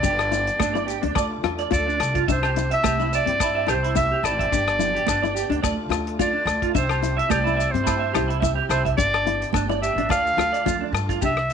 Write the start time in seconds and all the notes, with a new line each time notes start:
Already playing: G4 D5
0.03 G1 B3 D4 G4, kick, closed hi-hat, muted conga, maracas
0.19 cross-stick, low agogo, maracas
0.32 E4, closed hi-hat, muted conga, maracas
0.47 closed hi-hat, maracas
0.59 G1 D4, kick, cross-stick, closed hi-hat, high conga, low agogo, maracas
0.74 E4 D5, maracas
0.87 G4, closed hi-hat, maracas
1.02 D2 D4, closed hi-hat
1.15 D2 A3 F4 D5, kick, cross-stick, closed hi-hat, muted conga, high conga, low agogo, maracas
1.43 E2 F4, cross-stick, closed hi-hat, low agogo
1.58 D5, closed hi-hat, maracas
1.71 D2 F4 A4 D5, kick, closed hi-hat, high conga, maracas
1.87 D4, maracas
1.99 C2, cross-stick, closed hi-hat, muted conga, low agogo, maracas
2.15 F4, kick, closed hi-hat, maracas
2.27 C2 C4 D4 E4 G4 E5, kick, closed hi-hat, muted conga, maracas
2.32 C5
2.43 G4, cross-stick, low agogo, maracas
2.55 E4, closed hi-hat, muted conga, maracas
2.71 E5, closed hi-hat
2.84 C2 G4, kick, cross-stick, closed hi-hat, high conga, low agogo, maracas
2.99 E4, maracas
3.13 D5 E5, closed hi-hat, maracas
3.26 G2 C4, closed hi-hat
3.40 E4, kick, cross-stick, closed hi-hat, muted conga, high conga, low agogo, maracas
3.55 E5
3.67 C2 E4 G4 C5, cross-stick, closed hi-hat, low agogo, maracas
3.83 E4, closed hi-hat
3.95 E4 E5, kick, closed hi-hat, high conga, maracas
4.12 G4
4.23 G#1 E4 D5, cross-stick, closed hi-hat, muted conga, low agogo, maracas
4.39 E5, kick, closed hi-hat
4.51 G1 B3 D4 G4, kick, closed hi-hat, muted conga, maracas
4.68 cross-stick, low agogo, maracas
4.79 E4, closed hi-hat, muted conga, low conga, maracas
4.95 G4, closed hi-hat
5.07 G1 D4, kick, cross-stick, closed hi-hat, high conga, low agogo, maracas
5.22 E4 D5, maracas
5.35 G4, closed hi-hat, maracas
5.50 D2 D4, closed hi-hat
5.62 D2 A3 D5, kick, cross-stick, closed hi-hat, muted conga, high conga, low agogo, maracas
5.67 F4
5.89 D2 F4, cross-stick, closed hi-hat, low agogo, maracas
6.07 closed hi-hat
6.19 F4 D5, kick, closed hi-hat, high conga, maracas
6.33 D4
6.45 D2, cross-stick, closed hi-hat, muted conga, low agogo, maracas
6.62 F4, kick, closed hi-hat
6.74 C2 C4 D4 E4 G4 C5 E5, kick, closed hi-hat, muted conga, maracas
6.89 G4, cross-stick, low agogo, maracas
7.02 E4, closed hi-hat, muted conga, maracas
7.17 E5, closed hi-hat
7.29 C2 G4 D5, kick, cross-stick, closed hi-hat, high conga, low agogo, maracas
7.44 E4, maracas
7.57 E5, closed hi-hat, maracas
7.71 G2 C4 C5, closed hi-hat
7.84 E4, kick, cross-stick, closed hi-hat, muted conga, high conga, low agogo, maracas
7.99 E5
8.13 C2 E4 G4, cross-stick, closed hi-hat, low agogo, maracas
8.28 E4, closed hi-hat
8.40 E4 E5, kick, closed hi-hat, high conga
8.44 maracas
8.55 G4
8.69 C2 E4 C5, cross-stick, closed hi-hat, muted conga, low agogo, maracas
8.85 E5, kick, closed hi-hat
8.97 G1 B3 D4 D5, muted clean electric guitar stroke, kick, closed hi-hat, muted conga, maracas
9.14 cross-stick, low agogo, maracas
9.26 E4, closed hi-hat, muted conga
9.42 closed hi-hat, maracas
9.53 G1 D4, kick, cross-stick, closed hi-hat, high conga, low agogo, maracas
9.69 E4 D5, maracas
9.82 G4 E5, closed hi-hat, maracas
9.95 A1 D4, closed hi-hat
10.09 D2 A3 F4 D5 F5, kick, cross-stick, closed hi-hat, muted conga, high conga, low agogo, maracas
10.27 maracas
10.37 D2 F4, cross-stick, closed hi-hat, low agogo, maracas
10.53 D5, closed hi-hat, maracas
10.65 F4, kick, closed hi-hat, high conga, low conga, maracas
10.81 D4
10.92 G2, cross-stick, closed hi-hat, muted conga, low agogo, maracas
11.09 F4, kick, closed hi-hat, maracas
11.21 C2 D4 G4 E5, kick, muted conga, maracas
11.37 cross-stick
11.50 closed hi-hat